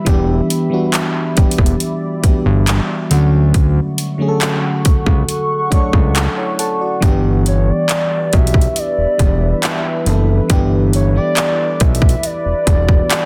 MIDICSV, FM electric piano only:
0, 0, Header, 1, 2, 480
1, 0, Start_track
1, 0, Tempo, 869565
1, 36, Time_signature, 4, 2, 24, 8
1, 7316, End_track
2, 0, Start_track
2, 0, Title_t, "FM electric piano"
2, 0, Program_c, 0, 5
2, 0, Control_c, 0, 64, 127
2, 27, Note_on_c, 0, 52, 114
2, 32, Note_on_c, 0, 55, 101
2, 38, Note_on_c, 0, 59, 109
2, 43, Note_on_c, 0, 62, 101
2, 44, Control_c, 0, 64, 0
2, 49, Note_on_c, 0, 67, 127
2, 130, Control_c, 0, 64, 127
2, 363, Note_off_c, 0, 52, 0
2, 366, Note_off_c, 0, 55, 0
2, 369, Note_off_c, 0, 59, 0
2, 371, Note_off_c, 0, 62, 0
2, 374, Note_off_c, 0, 67, 0
2, 385, Note_on_c, 0, 52, 92
2, 391, Note_on_c, 0, 55, 83
2, 397, Note_on_c, 0, 59, 84
2, 402, Note_on_c, 0, 62, 81
2, 407, Note_on_c, 0, 66, 98
2, 722, Note_off_c, 0, 52, 0
2, 725, Note_off_c, 0, 55, 0
2, 728, Note_off_c, 0, 59, 0
2, 731, Note_off_c, 0, 62, 0
2, 733, Note_off_c, 0, 66, 0
2, 747, Note_on_c, 0, 52, 83
2, 752, Note_on_c, 0, 55, 74
2, 758, Note_on_c, 0, 59, 77
2, 763, Note_on_c, 0, 62, 74
2, 769, Note_on_c, 0, 67, 92
2, 1194, Note_off_c, 0, 52, 0
2, 1196, Note_off_c, 0, 55, 0
2, 1199, Note_off_c, 0, 59, 0
2, 1201, Note_off_c, 0, 62, 0
2, 1204, Note_off_c, 0, 67, 0
2, 1228, Note_on_c, 0, 52, 76
2, 1233, Note_on_c, 0, 55, 71
2, 1237, Note_on_c, 0, 59, 70
2, 1243, Note_on_c, 0, 62, 69
2, 1248, Note_on_c, 0, 67, 88
2, 1709, Note_on_c, 0, 50, 96
2, 1712, Note_off_c, 0, 52, 0
2, 1714, Note_on_c, 0, 54, 83
2, 1715, Note_off_c, 0, 55, 0
2, 1717, Note_off_c, 0, 59, 0
2, 1720, Note_off_c, 0, 62, 0
2, 1720, Note_on_c, 0, 57, 84
2, 1722, Note_off_c, 0, 67, 0
2, 1724, Control_c, 0, 64, 0
2, 1725, Note_on_c, 0, 61, 83
2, 1730, Note_on_c, 0, 66, 104
2, 1820, Control_c, 0, 64, 127
2, 2265, Note_off_c, 0, 50, 0
2, 2268, Note_off_c, 0, 54, 0
2, 2270, Note_off_c, 0, 57, 0
2, 2273, Note_off_c, 0, 61, 0
2, 2276, Note_off_c, 0, 66, 0
2, 2307, Note_on_c, 0, 50, 91
2, 2313, Note_on_c, 0, 54, 84
2, 2318, Note_on_c, 0, 57, 84
2, 2323, Note_on_c, 0, 61, 84
2, 2329, Note_on_c, 0, 68, 78
2, 2359, Note_off_c, 0, 68, 0
2, 2365, Note_on_c, 0, 69, 101
2, 3085, Note_off_c, 0, 50, 0
2, 3088, Note_off_c, 0, 54, 0
2, 3091, Note_off_c, 0, 57, 0
2, 3093, Note_off_c, 0, 61, 0
2, 3114, Note_off_c, 0, 69, 0
2, 3149, Note_on_c, 0, 62, 80
2, 3154, Note_on_c, 0, 54, 76
2, 3159, Note_on_c, 0, 57, 75
2, 3160, Note_on_c, 0, 74, 69
2, 3165, Note_on_c, 0, 73, 73
2, 3170, Note_on_c, 0, 69, 91
2, 3381, Note_off_c, 0, 74, 0
2, 3399, Note_on_c, 0, 78, 70
2, 3403, Note_off_c, 0, 69, 0
2, 3512, Note_off_c, 0, 73, 0
2, 3518, Note_on_c, 0, 73, 61
2, 3521, Note_on_c, 0, 64, 52
2, 3621, Note_off_c, 0, 78, 0
2, 3631, Note_off_c, 0, 73, 0
2, 3633, Note_off_c, 0, 64, 0
2, 3638, Note_on_c, 0, 78, 68
2, 3638, Note_on_c, 0, 81, 69
2, 3642, Note_on_c, 0, 69, 62
2, 3751, Note_off_c, 0, 78, 0
2, 3753, Note_off_c, 0, 69, 0
2, 3759, Note_on_c, 0, 74, 64
2, 3762, Note_on_c, 0, 66, 54
2, 3815, Note_off_c, 0, 62, 0
2, 3818, Note_off_c, 0, 54, 0
2, 3821, Note_off_c, 0, 57, 0
2, 3860, Note_off_c, 0, 81, 0
2, 3867, Note_on_c, 0, 52, 116
2, 3872, Note_on_c, 0, 55, 104
2, 3878, Note_on_c, 0, 59, 104
2, 3882, Control_c, 0, 64, 0
2, 3884, Note_on_c, 0, 62, 99
2, 3889, Note_on_c, 0, 67, 122
2, 3981, Control_c, 0, 64, 127
2, 3986, Note_off_c, 0, 74, 0
2, 3987, Note_off_c, 0, 66, 0
2, 4756, Note_off_c, 0, 52, 0
2, 4758, Note_off_c, 0, 55, 0
2, 4761, Note_off_c, 0, 59, 0
2, 4764, Note_off_c, 0, 62, 0
2, 4767, Note_off_c, 0, 67, 0
2, 5068, Note_on_c, 0, 52, 73
2, 5073, Note_on_c, 0, 55, 67
2, 5078, Note_on_c, 0, 59, 67
2, 5083, Note_on_c, 0, 62, 63
2, 5089, Note_on_c, 0, 67, 78
2, 5514, Note_off_c, 0, 52, 0
2, 5517, Note_off_c, 0, 55, 0
2, 5519, Note_off_c, 0, 59, 0
2, 5521, Note_off_c, 0, 62, 0
2, 5525, Note_off_c, 0, 67, 0
2, 5547, Note_on_c, 0, 52, 82
2, 5553, Note_on_c, 0, 55, 78
2, 5559, Note_on_c, 0, 59, 77
2, 5564, Note_on_c, 0, 62, 81
2, 5570, Note_on_c, 0, 69, 97
2, 5773, Note_off_c, 0, 52, 0
2, 5776, Note_off_c, 0, 55, 0
2, 5779, Note_off_c, 0, 59, 0
2, 5781, Note_off_c, 0, 62, 0
2, 5784, Note_off_c, 0, 69, 0
2, 5788, Note_on_c, 0, 52, 114
2, 5793, Note_on_c, 0, 55, 106
2, 5798, Note_on_c, 0, 59, 110
2, 5803, Note_on_c, 0, 62, 102
2, 5809, Note_on_c, 0, 67, 127
2, 6124, Note_off_c, 0, 52, 0
2, 6126, Note_off_c, 0, 55, 0
2, 6129, Note_off_c, 0, 59, 0
2, 6131, Note_off_c, 0, 62, 0
2, 6134, Note_off_c, 0, 67, 0
2, 6148, Note_on_c, 0, 52, 73
2, 6154, Note_on_c, 0, 55, 62
2, 6159, Note_on_c, 0, 59, 68
2, 6164, Note_on_c, 0, 62, 64
2, 6170, Note_on_c, 0, 67, 80
2, 6926, Note_off_c, 0, 52, 0
2, 6928, Note_off_c, 0, 55, 0
2, 6931, Note_off_c, 0, 59, 0
2, 6934, Note_off_c, 0, 62, 0
2, 6937, Note_off_c, 0, 67, 0
2, 6989, Note_on_c, 0, 52, 73
2, 6996, Note_on_c, 0, 55, 66
2, 7000, Note_on_c, 0, 59, 66
2, 7006, Note_on_c, 0, 62, 68
2, 7011, Note_on_c, 0, 66, 79
2, 7316, Note_off_c, 0, 52, 0
2, 7316, Note_off_c, 0, 55, 0
2, 7316, Note_off_c, 0, 59, 0
2, 7316, Note_off_c, 0, 62, 0
2, 7316, Note_off_c, 0, 66, 0
2, 7316, End_track
0, 0, End_of_file